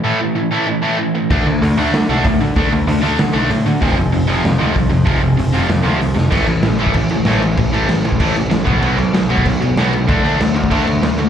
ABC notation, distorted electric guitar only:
X:1
M:4/4
L:1/8
Q:1/4=191
K:Dlyd
V:1 name="Distorted electric guitar" clef=bass
[A,,E,A,] [A,,E,] [A,,E,] [A,,E,A,] [A,,E,] [A,,E,A,] [A,,E,] [A,,E,] | [D,A,D] [D,A,] [D,A,] [D,A,D] [D,A,] [D,A,D] [D,A,] [D,A,] | [D,A,D] [D,A,] [D,A,] [D,A,D] [D,A,] [D,A,D] [D,A,] [D,A,] | [=F,,=C,=F,] [F,,C,] [F,,C,] [F,,C,F,] [F,,C,] [F,,C,F,] [F,,C,] [F,,C,] |
[=F,,=C,=F,] [F,,C,] [F,,C,] [F,,C,F,] [F,,C,] [F,,C,F,] [F,,C,] [F,,C,] | [A,,E,A,] [A,,E,] [A,,E,] [A,,E,A,] [A,,E,] [A,,E,] [A,,E,A,] [A,,E,] | [A,,E,] [A,,E,A,] [A,,E,] [A,,E,] [A,,E,A,] [A,,E,] [A,,E,] [B,,F,B,] | [B,,F,B,] [B,,F,] [B,,F,] [B,,F,B,] [B,,F,] [B,,F,] [B,,F,B,] [B,,F,] |
[D,A,D] [D,A,D] [D,A,] [D,A,] [D,A,D] [D,A,] [D,A,] [D,A,] |]